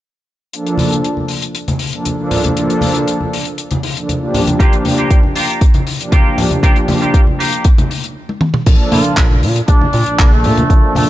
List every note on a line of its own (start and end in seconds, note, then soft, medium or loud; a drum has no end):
0.53 0.75 F3 medium
0.53 0.76 A#3 medium
0.53 0.76 D4 medium
0.53 0.76 A4 medium
0.53 closed hi-hat medium
0.67 closed hi-hat soft
0.78 0.91 F3 medium
0.78 0.91 A#3 medium
0.78 0.91 D4 medium
0.78 0.91 A4 loud
0.78 open hi-hat medium
0.78 high conga medium
0.92 closed hi-hat medium
1.04 closed hi-hat medium
1.17 high conga medium
1.28 open hi-hat medium
1.42 closed hi-hat medium
1.55 closed hi-hat medium
1.68 closed hi-hat soft
1.68 high conga medium
1.79 open hi-hat medium
1.93 2.05 F3 medium
1.93 2.05 A#3 medium
1.93 2.05 D4 medium
1.93 2.05 A4 medium
1.93 closed hi-hat medium
2.05 closed hi-hat medium
2.05 high conga medium
2.18 2.37 F3 medium
2.18 2.37 A#3 medium
2.18 2.38 D4 medium
2.18 2.38 A4 loud
2.31 open hi-hat medium
2.31 low conga medium
2.44 closed hi-hat medium
2.44 high conga medium
2.56 2.79 F3 medium
2.56 2.79 A#3 medium
2.56 2.79 D4 medium
2.56 2.79 A4 medium
2.56 closed hi-hat medium
2.70 closed hi-hat soft
2.81 2.94 F3 medium
2.81 2.94 A#3 medium
2.81 2.94 D4 medium
2.81 2.94 A4 loud
2.81 open hi-hat medium
2.81 high conga medium
2.95 closed hi-hat medium
3.08 closed hi-hat medium
3.21 high conga medium
3.33 open hi-hat loud
3.45 closed hi-hat medium
3.58 closed hi-hat medium
3.71 closed hi-hat medium
3.71 high conga medium
3.83 open hi-hat loud
3.96 4.08 F3 medium
3.96 4.08 A#3 medium
3.96 4.08 D4 medium
3.96 4.08 A4 medium
3.96 closed hi-hat medium
4.09 closed hi-hat medium
4.09 high conga medium
4.22 4.40 F3 medium
4.22 4.41 A#3 medium
4.22 4.41 D4 medium
4.22 4.41 G4 loud
4.34 open hi-hat medium
4.34 low conga medium
4.47 closed hi-hat medium
4.47 high conga medium
4.59 4.82 F3 medium
4.59 4.73 A#3 loud
4.59 4.82 A#3 medium
4.59 4.83 D4 medium
4.59 4.73 F4 medium
4.59 4.73 G4 loud
4.59 4.83 G4 medium
4.59 kick loud
4.59 closed hi-hat medium
4.73 closed hi-hat soft
4.85 4.97 F3 medium
4.85 4.97 A#3 medium
4.85 4.97 D4 medium
4.85 4.98 G4 loud
4.85 muted clean electric guitar stroke soft
4.85 open hi-hat loud
4.85 high conga medium
4.98 5.17 A#3 medium
4.98 5.17 F4 medium
4.98 5.17 G4 medium
4.98 closed hi-hat medium
5.11 kick loud
5.11 closed hi-hat medium
5.23 high conga medium
5.36 5.61 A#3 medium
5.36 5.62 F4 medium
5.36 5.62 G4 medium
5.36 open hi-hat loud
5.50 closed hi-hat medium
5.61 kick loud
5.61 closed hi-hat medium
5.74 closed hi-hat soft
5.74 high conga medium
5.87 muted clean electric guitar stroke soft
5.87 open hi-hat loud
6.00 6.11 F3 medium
6.00 6.11 A#3 medium
6.00 6.12 D4 medium
6.00 6.12 G4 medium
6.00 closed hi-hat medium
6.12 6.38 A#3 medium
6.12 6.38 F4 medium
6.12 6.38 G4 medium
6.12 kick loud
6.12 closed hi-hat medium
6.12 high conga medium
6.25 6.44 F3 medium
6.25 6.44 A#3 medium
6.25 6.44 D4 medium
6.25 6.44 G4 loud
6.38 open hi-hat loud
6.38 low conga medium
6.51 closed hi-hat medium
6.51 high conga medium
6.63 6.85 F3 medium
6.63 6.76 A#3 loud
6.63 6.86 A#3 medium
6.63 6.86 D4 medium
6.63 6.76 F4 loud
6.63 6.77 G4 loud
6.63 6.86 G4 medium
6.63 kick loud
6.63 closed hi-hat medium
6.76 closed hi-hat soft
6.88 7.01 F3 medium
6.88 7.01 A#3 medium
6.88 7.01 D4 medium
6.88 7.01 G4 loud
6.88 muted clean electric guitar stroke soft
6.88 open hi-hat loud
6.88 high conga loud
7.01 7.20 A#3 medium
7.01 7.21 F4 medium
7.01 7.21 G4 medium
7.01 closed hi-hat medium
7.14 kick loud
7.14 closed hi-hat medium
7.27 high conga medium
7.39 7.65 A#3 medium
7.39 7.65 F4 medium
7.39 7.65 G4 medium
7.39 open hi-hat loud
7.53 closed hi-hat medium
7.64 kick loud
7.64 closed hi-hat medium
7.78 closed hi-hat soft
7.78 high conga medium
7.90 muted clean electric guitar stroke soft
7.90 open hi-hat medium
8.04 closed hi-hat medium
8.29 high tom soft
8.41 mid tom medium
8.54 mid tom medium
8.66 8.76 A#1 medium
8.66 8.89 F3 medium
8.66 8.89 A#3 medium
8.66 8.89 D4 medium
8.66 8.89 A4 loud
8.66 kick loud
8.66 closed hi-hat medium
8.66 crash medium
8.92 9.01 A#2 medium
8.92 9.04 F3 medium
8.92 9.04 A#3 medium
8.92 9.04 D4 medium
8.92 9.15 F4 medium
8.92 9.04 A4 loud
8.92 open hi-hat loud
8.92 high conga medium
9.04 closed hi-hat medium
9.17 9.44 A#1 medium
9.17 kick loud
9.17 clap loud
9.17 closed hi-hat medium
9.31 high conga medium
9.43 9.61 A#2 medium
9.43 open hi-hat loud
9.56 closed hi-hat medium
9.68 9.87 A#1 medium
9.68 10.30 D4 medium
9.68 kick loud
9.68 closed hi-hat medium
9.81 high conga medium
9.93 10.03 A#2 medium
9.93 open hi-hat medium
10.06 10.17 A#1 soft
10.06 10.18 F3 medium
10.06 10.18 A#3 medium
10.06 10.18 D4 medium
10.06 10.19 A4 medium
10.06 closed hi-hat medium
10.19 10.46 A#1 loud
10.19 kick loud
10.19 clap loud
10.19 closed hi-hat medium
10.19 high conga medium
10.32 10.51 F3 medium
10.32 10.93 A3 medium
10.32 10.51 A#3 medium
10.32 10.51 D4 medium
10.32 10.51 A4 loud
10.44 10.63 A#2 medium
10.44 open hi-hat loud
10.44 low conga medium
10.57 closed hi-hat medium
10.57 high conga medium
10.70 10.79 A#1 medium
10.70 10.92 F3 medium
10.70 10.93 A#3 medium
10.70 10.93 D4 medium
10.70 10.93 A4 loud
10.70 kick loud
10.70 closed hi-hat medium
10.95 11.05 A#2 medium
10.95 11.07 F3 medium
10.95 11.10 A3 medium
10.95 11.08 A#3 medium
10.95 11.08 D4 medium
10.95 11.08 A4 loud
10.95 open hi-hat loud
10.95 high conga medium